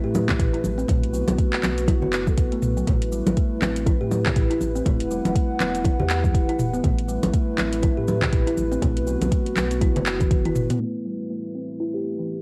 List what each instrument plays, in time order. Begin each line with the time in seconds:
Already playing: analog synth pad A3 E4 B4
0.04 sub bass A2, kalimba G4
0.15 high conga, shaker
0.28 kalimba E3, kick, clap, low conga, shaker
0.39 sub bass A1, kick, closed hi-hat, mid tom, shaker
0.53 kalimba E4, closed hi-hat
0.64 sub bass A1, high conga, shaker
0.78 kalimba C4, shaker
0.88 sub bass B1, kalimba A3, analog synth pad B3 F#4, kick, closed hi-hat, mid tom, low conga, shaker
1.03 closed hi-hat
1.13 kalimba F#3, shaker
1.28 sub bass B1, closed hi-hat, high conga, shaker
1.38 kalimba A3, kick, closed hi-hat, shaker
1.53 clap
1.63 sub bass B1, kalimba B3, clap, high conga, shaker
1.78 closed hi-hat, shaker
1.88 kalimba E4, kick, closed hi-hat, high conga, shaker
2.02 sub bass F#1, kalimba F#4, low conga
2.13 clap, shaker
2.27 kalimba A4, kick, high conga, shaker
2.38 sub bass B1, kick, closed hi-hat, shaker
2.52 kalimba A3, closed hi-hat
2.62 sub bass B1, mid tom, shaker
2.77 kalimba F#3, shaker
2.87 sub bass A1, kalimba A3, analog synth pad A3 E4 B4, kick, closed hi-hat, mid tom, low conga, shaker
3.02 closed hi-hat
3.12 kalimba G3, shaker
3.27 sub bass A1, closed hi-hat, high conga, shaker
3.37 kalimba A3, kick, closed hi-hat, shaker
3.62 sub bass A1, kalimba C4, clap, high conga, shaker
3.76 closed hi-hat, shaker
3.86 kalimba E4, kick, closed hi-hat, high conga, shaker
4.01 sub bass A2, kalimba G4
4.11 high conga, shaker
4.26 kalimba E3, kick, clap, low conga, shaker
4.36 sub bass A1, kick, closed hi-hat, mid tom, shaker
4.50 kalimba E4, closed hi-hat
4.61 sub bass A1, high conga, shaker
4.75 kalimba C4, shaker
4.85 sub bass E1, kalimba A3, analog synth pad F#5, kick, closed hi-hat, mid tom, low conga, shaker
5.00 closed hi-hat
5.11 kalimba G3, shaker
5.25 sub bass E1, closed hi-hat, high conga, shaker
5.35 kalimba A3, kick, closed hi-hat, shaker
5.60 sub bass E1, kalimba B3, clap, high conga, shaker
5.75 closed hi-hat, shaker
5.84 kalimba E4, kick, closed hi-hat, high conga, shaker
5.99 sub bass E2, kalimba G4, low conga
6.10 clap, shaker
6.24 kalimba E3, kick, high conga, shaker
6.34 sub bass E1, kick, closed hi-hat, shaker
6.49 kalimba E4, closed hi-hat
6.59 sub bass E1, mid tom, shaker
6.74 kalimba B3, shaker
6.84 sub bass A1, kalimba A3, analog synth pad A3 E4 B4, kick, closed hi-hat, mid tom, low conga, shaker
6.98 closed hi-hat
7.08 kalimba G3, shaker
7.23 sub bass A1, closed hi-hat, high conga, shaker
7.33 kalimba A3, kick, closed hi-hat, shaker
7.58 sub bass A1, kalimba C4, clap, high conga, shaker
7.73 closed hi-hat, shaker
7.83 kalimba E4, kick, closed hi-hat, high conga, shaker
7.97 sub bass A2, kalimba G4
8.08 high conga, shaker
8.22 kalimba E3, kick, clap, low conga, shaker
8.33 sub bass A1, kick, closed hi-hat, mid tom, shaker
8.47 kalimba E4, closed hi-hat
8.57 sub bass A1, high conga, shaker
8.72 kalimba C4, shaker
8.82 sub bass B1, kalimba A3, analog synth pad B3 F#4, kick, closed hi-hat, mid tom, low conga, shaker
8.97 closed hi-hat
9.07 kalimba F#3, shaker
9.21 sub bass B1, closed hi-hat, high conga, shaker
9.32 kalimba A3, kick, closed hi-hat, shaker
9.46 closed hi-hat
9.56 sub bass B1, kalimba B3, clap, high conga, shaker
9.71 closed hi-hat, shaker
9.81 kalimba E4, kick, closed hi-hat, high tom, high conga, shaker
9.96 sub bass F#1, kalimba F#4, closed hi-hat, high tom, low conga
10.06 clap, shaker
10.20 kalimba E3, kick, closed hi-hat, mid tom, high conga, shaker
10.31 sub bass F#1, kick, closed hi-hat, mid tom, shaker
10.45 kalimba E4, closed hi-hat, mid tom
10.56 sub bass F#1, mid tom, shaker
10.70 kalimba B3, closed hi-hat, mid tom, shaker
10.80 kalimba A3, analog synth pad A3 E4 B4
11.05 kalimba G3
11.30 kalimba A3
11.55 kalimba C4
11.80 kalimba E4
11.94 kalimba G4
12.19 kalimba E3